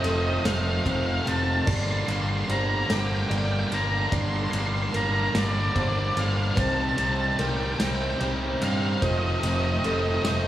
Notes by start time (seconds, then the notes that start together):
0.02 F1 F2 C3 D#3 F3 A3 D#4 A4 D#5, ride
0.07 C4 D#5
0.17 D#5
0.26 D#5
0.34 D#5
0.41 F2 D#5
0.45 F1 C3 D#3 F3 A3 C4 D#4 F5, snare, ride
0.53 F5
0.61 F5
0.69 F5
0.76 F5
0.84 F1 F2 C3 D#3 F3 A3 C4 D#4 C5 F5, kick, ride
0.92 F5
0.99 F5
1.06 F5
1.14 F5
1.22 F5
1.26 F1 F2 C3 D#3 F3 A3 C4 D#4 A5, ride
1.37 A5
1.44 A5
1.53 A5
1.61 A5
1.66 G1 G2 D3 G3 A#3 D4 D5 C6, kick, crash
1.76 C6
1.83 C6
1.91 C6
1.98 C6
2.07 G1 G2 D3 G3 A#3 D4 C6, ride
2.13 C6
2.21 C6
2.29 C6
2.37 C6
2.44 C6
2.48 G1 G2 D3 G3 A#3 D4 C5 A#5, ride
2.59 A#5
2.67 A#5
2.75 A#5
2.83 A#5
2.90 G1 G2 D3 G3 A#3 D4 G5, snare, ride
3.00 G5
3.07 G5
3.15 G5
3.22 G5
3.29 G1 G2 D3 G3 D5 G5, ride
3.33 A#3 D4
3.37 G5
3.45 G5
3.52 G5
3.59 G5
3.68 G1 G5
3.72 G2 D3 G3 A#3 D4 A#5, ride
3.83 A#5
3.90 A#5
3.98 A#5
4.07 A#5
4.12 G1 G2 D3 G3 A#3 D4 D5 C6, kick, ride
4.21 C6
4.29 C6
4.36 C6
4.44 C6
4.51 G1 G2 D3 G3 A#3 C6, ride
4.55 D4 C6
4.66 C6
4.74 C6
4.82 C6
4.88 C6
4.93 G1 G2 D3 G3 A#3 D4 A#4 A#5, ride
5.05 A#5
5.12 A#5
5.20 A#5
5.27 A#5
5.34 G1 G2 D3 G3 A#3 D4 D5, snare, ride
5.45 D5
5.51 D5
5.59 D5
5.68 D5
5.75 G1 G2 D3 G3 A#3 D4 C5 D5, kick, ride
5.82 D5
5.88 D5
5.97 D5
6.04 D5
6.12 D5
6.16 G1 G2 D3 G3 A#3 D4 F5, ride
6.28 F5
6.35 F5
6.42 F5
6.51 F5
6.56 C2 C3 G3 C4 D#4 C5 A5, kick, ride
6.66 A5
6.73 A5
6.81 A5
6.89 A5
6.97 C2 C3 G3 C4 D#4 A5, ride
7.04 A5
7.12 A5
7.21 A5
7.27 A5
7.39 C2 C3 G3 C4 D#4 A#4 G5, ride
7.49 G5
7.56 G5
7.64 G5
7.72 G5
7.79 C2 C3 G3 C4 D#4 G5, snare, ride
7.87 G5
7.95 G5
8.02 G5
8.10 G5
8.20 C2 C3 G3 C4 D#4 C5, ride
8.61 G2 C3 G3 C4 D#4 F5, ride
8.70 F5
8.78 F5
8.85 F5
8.93 F5
9.02 F1 F2 C3 D#3 F3 A3 C4 D#4 C5 D#5, kick, ride
9.11 D#5
9.18 D#5
9.25 D#5
9.33 D#5
9.40 F1 F2 C3 D#3 D#5, ride
9.44 F3 A3 C4 D#4 D#5
9.56 D#5
9.64 D#5
9.71 D#5
9.79 D#5
9.84 F1 F2 C3 D#3 F3 A3 C4 D#4 A4 D#5, ride
9.93 D#5
10.01 D#5
10.08 D#5
10.16 D#5
10.24 F1 F2 C3 D#3 F3 A3 C4 D#4 D#5, snare, ride
10.32 D#5
10.39 D#5